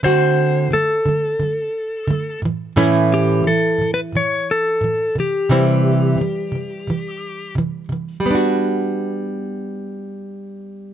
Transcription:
<<
  \new Staff \with { instrumentName = "Electric slide guitar" } { \time 4/4 \key g \major \tempo 4 = 88 c''4 a'2~ a'8 r8 | r8 g'8 \tuplet 3/2 { a'4 b'8 } cis''8 a'4 g'8~ | g'2. r4 | r1 | }
  \new Staff \with { instrumentName = "Nylon-string guitar" } { \clef bass \time 4/4 \key g \major <d a c' fis'>4 <d a>8 <d a>8 <d a>8 r8 <d a>8 <a, e>8 | <a, e a cis' e'>4 <a, e>8 <a, e>8 <a, e>8 r8 <a, e>8 <c e>8 | <c e g c' e'>4 <c e>8 <c e>8 <c e>8 r8 <c e>8 <c e>8 | <g b d' fis'>1 | }
>>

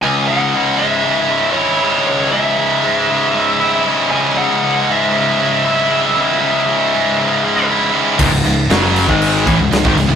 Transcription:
<<
  \new Staff \with { instrumentName = "Lead electric guitar" } { \time 4/4 \key cis \minor \tempo 4 = 118 gis''8 fis''4 e''4. cis''4 | cis''8 e''2. r8 | gis''8 fis''4 e''2~ e''8~ | e''2. r4 |
r1 | }
  \new Staff \with { instrumentName = "Distorted electric guitar" } { \clef bass \time 4/4 \key cis \minor cis,8 cis8 gis8 gis,8 cis8 gis8 e'8 gis8 | cis,8 cis8 gis8 gis,8 cis8 gis8 e'8 gis8 | cis,8 cis8 gis8 gis,8 cis8 gis8 e'8 gis8 | cis,8 cis8 gis8 gis,8 cis8 gis8 e'8 gis8 |
<cis, gis,>16 <cis, gis,>16 <cis, gis,>8 <fis, cis fis>8. <gis, dis gis>8. <a, e>16 <cis, gis,>16 <cis, gis,>16 <gis, dis>16 <cis, gis,>16 <cis, gis,>16 | }
  \new Staff \with { instrumentName = "Distorted electric guitar" } { \clef bass \time 4/4 \key cis \minor cis,8 gis,8 cis8 gis8 gis,8 cis8 e'8 cis8 | cis,8 gis,8 cis8 gis8 gis,8 cis8 e'8 cis8 | cis,8 gis,8 cis8 gis8 gis,8 cis8 e'8 cis8 | cis,8 gis,8 cis8 gis8 gis,8 cis8 e'8 cis8 |
<cis, gis,>16 <cis, gis,>16 <cis, gis,>8 <fis, cis fis>8. <gis, dis gis>8. <a, e>16 <cis, gis,>16 <cis, gis,>16 <gis, dis>16 <cis, gis,>16 <cis, gis,>16 | }
  \new Staff \with { instrumentName = "Overdriven electric guitar" } { \clef bass \time 4/4 \key cis \minor r1 | r1 | r1 | r1 |
<cis, gis,>16 <cis, gis,>16 <cis, gis,>8 <fis, cis fis>8. <gis, dis gis>8. <a, e>16 <cis, gis,>16 <cis, gis,>16 <gis, dis>16 <cis, gis,>16 <cis, gis,>16 | }
  \new Staff \with { instrumentName = "Picked electric bass" } { \clef bass \time 4/4 \key cis \minor r1 | r1 | r1 | r1 |
cis,,16 cis,,16 cis,,8 fis,,8. gis,,8. a,,16 cis,,16 cis,,16 gis,,16 cis,,16 cis,,16 | }
  \new DrumStaff \with { instrumentName = "Drums" } \drummode { \time 4/4 r4 r4 r4 r4 | r4 r4 r4 r4 | r4 r4 r4 r4 | r4 r4 r4 r4 |
<cymc bd>8 cymc8 <cymc sn>8 cymc16 bd16 cymc8 <cymc bd>8 <cymc sn>16 bd16 cymc8 | }
>>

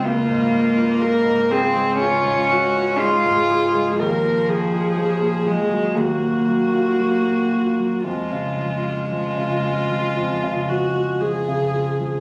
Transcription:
<<
  \new Staff \with { instrumentName = "Viola" } { \time 4/4 \key des \major \tempo 4 = 60 f'4 bes'8 aes'8 f'8 ges'8 aes'4 | bes'8 aes'4. ges'2 | f'4 f'4. ges'8 aes'4 | }
  \new Staff \with { instrumentName = "Cello" } { \time 4/4 \key des \major bes4. c'8 des'4 f'4 | f4. aes8 bes2 | aes2. r4 | }
  \new Staff \with { instrumentName = "Grand piano" } { \clef bass \time 4/4 \key des \major des,16 aes,16 aes16 f'16 aes16 aes,16 f'16 aes16 des,16 aes,16 aes16 f'16 aes16 aes,16 f'16 aes16 | ees,16 bes,16 f16 f'16 f16 bes,16 f'16 ges16 ees,16 bes,16 ges16 f'16 ges16 bes,16 f'16 ges16 | f,16 des16 f16 f'16 f16 des16 f'16 f16 f,16 des16 f16 f'16 f16 des16 f'16 f16 | }
>>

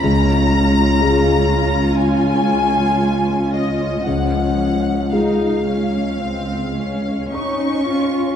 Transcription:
<<
  \new Staff \with { instrumentName = "Violin section" } { \time 4/4 \key des \mixolydian \tempo 4 = 57 bes''2 aes''4. ees''8 | ges''4 f''2 des'''4 | }
  \new Staff \with { instrumentName = "Grand piano" } { \time 4/4 \key des \mixolydian << { r1 | r2. des'''4 | } \\ { des,4 <aes f' aes'>2. | des,4 <aes f' aes'>2. | } >> }
  \new Staff \with { instrumentName = "French horn section" } { \time 4/4 \key des \mixolydian r1 | r2. des'4 | }
  \new Staff \with { instrumentName = "Viola section" } { \time 4/4 \key des \mixolydian <des' f'>1 | <f des'>4 ees'8 des'8 c'8 des'8 ees'8 f'8 | }
  \new Staff \with { instrumentName = "Cello section" } { \clef bass \time 4/4 \key des \mixolydian des,1 | des,2. des'4 | }
>>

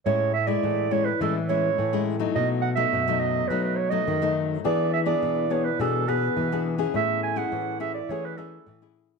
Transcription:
<<
  \new Staff \with { instrumentName = "Clarinet" } { \time 4/4 \key a \major \tempo 4 = 105 cis''8 e''16 d''8. cis''16 b'16 a'8 cis''4 r8 | dis''8 fis''16 e''8. dis''8 b'16 b'16 cis''16 dis''8. r8 | d''8 e''16 d''8. cis''16 b'16 a'8 b'4 r8 | e''8 gis''16 fis''8. e''16 d''16 cis''16 b'16 a'4 r8 | }
  \new Staff \with { instrumentName = "Nylon-string guitar" } { \time 4/4 \key a \major << { <gis cis' e'>8 r16 <gis e'>8. <gis cis' e'>16 r16 <gis cis' e'>16 r16 <gis cis' e'>8 r16 <gis cis' e'>8 <fis a dis'>16~ | <fis a dis'>8. <fis a dis'>8 <fis a dis'>8. <fis a dis'>8. <fis a dis'>8 <fis a dis'>8. | <b d' gis'>8. <b d' gis'>8. <b d' gis'>16 r16 <b d' gis'>8 <b d' gis'>8. <b d' gis'>8 <cis' e' gis'>16~ | <cis' e' gis'>8. <cis' e' gis'>8. <cis' e' gis'>16 r16 <cis' e' gis'>8 <cis' e' gis'>8 r16 <cis' e' gis'>8. | } \\ { a,4 e4 a,4 e4 | b,4 fis,4 b,4 fis,4 | e4 b,4 e4 b,4 | a4 e4 a4 e4 | } >> }
  \new Staff \with { instrumentName = "Nylon-string guitar" } { \clef bass \time 4/4 \key a \major a,4 a,4 e4 a,4 | b,4 b,4 fis4 dis4 | e4 e4 b,4 e4 | a,4 a,4 e4 a,4 | }
>>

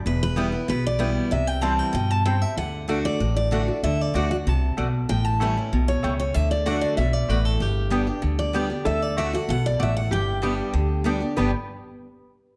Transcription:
<<
  \new Staff \with { instrumentName = "Steel-string acoustic guitar" } { \time 4/4 \key g \major \tempo 4 = 191 b'8 b'4. b'8 d''4. | e''8 g''8 a''8 g''8 g''8 a''8 g''8 e''8 | fis''4 r8 d''4 d''4. | e''8 d''8 d''8 fis''8 a''2 |
g''8 a''2 cis''4 cis''8 | e''8 d''8 fis''8 d''8 e''8 d''8 b'8 a'8 | g'2~ g'8 d''4. | e''8 d''8 e''8 fis''8 fis''8 d''8 e''8 fis''8 |
g''2. r4 | r1 | }
  \new Staff \with { instrumentName = "Mandolin" } { \time 4/4 \key g \major r4 <b e' b' g''>8 r4. <b e' b' g''>8 r8 | r4 <c' e' c'' g''>8 r4. <c' e' c'' g''>8 r8 | r4 <a fis' d'' fis''>8 r4. <a fis' d'' fis''>8 r8 | r4 <a fis' d'' fis''>8 r4. <a fis' d'' fis''>8 r8 |
r4 <a e' cis'' g''>8 r4. <a e' cis'' g''>8 r8 | r4 <a fis' d'' fis''>8 r4. <a fis' d'' fis''>8 r8 | r4 <b g' d'' g''>8 r4. <b g' d'' g''>8 r8 | r4 <a fis' d'' fis''>8 r4. <a fis' d'' fis''>8 r8 |
r4 <b g' d'' g''>8 r4. <b g' d'' g''>8 r8 | <b g' d'' g''>8 r2. r8 | }
  \new Staff \with { instrumentName = "Resonator guitar played with a steel bar" } { \time 4/4 \key g \major r1 | r1 | r1 | r1 |
r1 | r1 | r1 | a'1 |
g'1 | b'8 r2. r8 | }
  \new Staff \with { instrumentName = "Steel-string acoustic guitar" } { \time 4/4 \key g \major << { r4 <e g b e'>8 <b e'>8 r4 <e g b e'>4 | r4 <e g c' e'>4 r2 | r4 <d a d' fis'>4 r4 <d a d' fis'>8 <d' fis'>8 | r4 <d a d' fis'>8 <d' fis'>8 r2 |
r4 <e g cis' e'>8 <cis' e'>8 r2 | r4 <d a d' fis'>4 r2 | r4 <g b d' g'>8 <d' g'>8 r4 <g b d' g'>8 <d' g'>8 | r4 <d a d' fis'>8 <d' fis'>8 r2 |
r4 <g b d' g'>4 r4 <g b d' g'>8 <d' g'>8 | <g, d g b d' g'>8 r2. r8 | } \\ { e,2 b,2 | c2 b,4 c4 | d2 a,2 | d2 c4 b,4 |
a,2 b,4 cis4 | d2 b,4 a,4 | g,2 d2 | d2 b,4 a,4 |
g,2 d2 | r1 | } >> }
  \new Staff \with { instrumentName = "Upright bass" } { \clef bass \time 4/4 \key g \major e,,2 b,,2 | c,2 g,2 | d,2 a,,2 | d,4 d,4 c,4 b,,4 |
a,,2 b,,4 cis,4 | d,2 b,,4 a,,4 | g,,2 d,2 | d,2 b,,4 a,,4 |
g,,2 d,2 | g,,8 r2. r8 | }
>>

